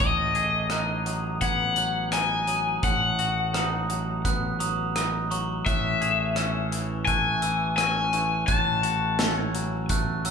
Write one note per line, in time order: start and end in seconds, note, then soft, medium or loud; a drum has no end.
0.00 2.79 A1 soft
0.00 1.77 A2 soft
0.00 1.41 D#5 medium
0.00 0.71 G#6 medium
0.00 kick medium
0.00 closed hi-hat soft
0.35 2.12 G#4 soft
0.35 closed hi-hat soft
0.70 2.11 D#4 soft
0.70 1.42 F#6 soft
0.70 cross-stick medium
0.70 closed hi-hat soft
1.06 1.76 F#3 soft
1.06 closed hi-hat soft
1.41 2.83 B3 soft
1.41 2.08 F#5 medium
1.41 1.77 G#6 medium
1.41 kick soft
1.41 closed hi-hat medium
1.76 2.46 F#3 soft
1.76 2.48 F#6 soft
1.76 closed hi-hat soft
2.12 2.83 D#4 soft
2.12 2.84 G#5 medium
2.12 cross-stick medium
2.12 closed hi-hat medium
2.47 2.83 F#3 soft
2.47 2.83 D#6 soft
2.47 closed hi-hat soft
2.83 5.62 A1 medium
2.83 4.60 A2 medium
2.83 4.21 F#5 medium
2.83 3.54 F#6 medium
2.83 kick medium
2.83 closed hi-hat medium
3.19 4.95 F#4 medium
3.19 closed hi-hat soft
3.54 4.94 D#4 soft
3.54 4.25 D#6 medium
3.54 cross-stick medium
3.54 closed hi-hat medium
3.90 4.59 F#3 soft
3.90 closed hi-hat soft
4.25 5.66 B3 medium
4.25 4.60 F#6 medium
4.25 kick medium
4.25 closed hi-hat medium
4.60 5.30 F#3 medium
4.60 5.31 D#6 medium
4.60 closed hi-hat soft
4.96 5.66 D#4 medium
4.96 cross-stick medium
4.96 closed hi-hat medium
5.31 5.66 F#3 soft
5.31 5.66 C#6 medium
5.31 closed hi-hat soft
5.66 8.45 A1 medium
5.66 7.43 A2 medium
5.66 7.03 E5 medium
5.66 6.37 F#6 medium
5.66 kick medium
5.66 closed hi-hat medium
6.01 7.78 G#4 medium
6.01 closed hi-hat soft
6.36 7.77 C#4 soft
6.36 7.08 E6 medium
6.36 cross-stick medium
6.36 closed hi-hat medium
6.72 7.42 E3 soft
6.72 closed hi-hat soft
7.05 8.49 A3 medium
7.05 7.75 G#5 medium
7.05 7.43 F#6 medium
7.05 kick medium
7.05 closed hi-hat soft
7.42 8.12 E3 medium
7.42 8.13 E6 medium
7.42 closed hi-hat soft
7.77 8.49 C#4 medium
7.77 8.46 G#5 medium
7.77 cross-stick medium
7.77 closed hi-hat medium
8.13 8.49 E3 soft
8.13 8.49 C#6 medium
8.13 closed hi-hat soft
8.47 10.31 A1 medium
8.47 10.25 A2 medium
8.47 9.37 A5 medium
8.47 9.19 F#6 medium
8.47 kick medium
8.47 closed hi-hat medium
8.83 10.31 F#4 medium
8.83 closed hi-hat soft
9.19 10.31 C#4 medium
9.19 9.90 E6 medium
9.19 snare medium
9.19 closed hi-hat medium
9.37 9.85 G#5 medium
9.55 10.24 F#3 soft
9.55 closed hi-hat soft
9.89 10.31 A3 medium
9.89 10.25 F#6 medium
9.89 kick medium
9.89 closed hi-hat medium
10.25 10.31 F#3 medium
10.25 10.31 E6 medium
10.25 closed hi-hat medium